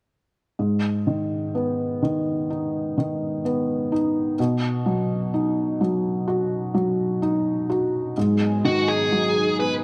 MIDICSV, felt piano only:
0, 0, Header, 1, 2, 480
1, 0, Start_track
1, 0, Key_signature, 5, "minor"
1, 0, Tempo, 949367
1, 299, Time_signature, 4, 2, 24, 8
1, 4974, End_track
2, 0, Start_track
2, 0, Title_t, "Felt piano"
2, 0, Program_c, 0, 0
2, 299, Note_on_c, 0, 44, 33
2, 392, Control_c, 0, 64, 127
2, 540, Note_on_c, 0, 51, 27
2, 783, Note_on_c, 0, 59, 33
2, 1016, Note_off_c, 0, 51, 0
2, 1024, Note_on_c, 0, 51, 29
2, 1265, Note_on_c, 0, 63, 31
2, 1497, Note_off_c, 0, 51, 0
2, 1505, Note_on_c, 0, 51, 31
2, 1723, Note_off_c, 0, 59, 0
2, 1745, Note_on_c, 0, 59, 35
2, 1974, Note_off_c, 0, 63, 0
2, 1982, Note_on_c, 0, 63, 35
2, 2198, Note_off_c, 0, 44, 0
2, 2199, Note_off_c, 0, 51, 0
2, 2206, Note_off_c, 0, 59, 0
2, 2212, Note_off_c, 0, 63, 0
2, 2220, Note_on_c, 0, 47, 38
2, 2224, Control_c, 0, 64, 0
2, 2304, Control_c, 0, 64, 127
2, 2457, Note_on_c, 0, 54, 31
2, 2699, Note_on_c, 0, 63, 37
2, 2929, Note_off_c, 0, 54, 0
2, 2936, Note_on_c, 0, 54, 35
2, 3173, Note_on_c, 0, 66, 40
2, 3402, Note_off_c, 0, 54, 0
2, 3410, Note_on_c, 0, 54, 37
2, 3630, Note_off_c, 0, 63, 0
2, 3651, Note_on_c, 0, 63, 42
2, 3884, Note_off_c, 0, 66, 0
2, 3891, Note_on_c, 0, 66, 39
2, 4110, Note_off_c, 0, 54, 0
2, 4111, Note_off_c, 0, 47, 0
2, 4117, Note_off_c, 0, 63, 0
2, 4124, Note_off_c, 0, 66, 0
2, 4134, Note_on_c, 0, 44, 42
2, 4137, Control_c, 0, 64, 0
2, 4225, Control_c, 0, 64, 127
2, 4372, Note_on_c, 0, 51, 36
2, 4612, Note_on_c, 0, 54, 35
2, 4854, Note_on_c, 0, 59, 33
2, 4974, Note_off_c, 0, 44, 0
2, 4974, Note_off_c, 0, 51, 0
2, 4974, Note_off_c, 0, 54, 0
2, 4974, Note_off_c, 0, 59, 0
2, 4974, End_track
0, 0, End_of_file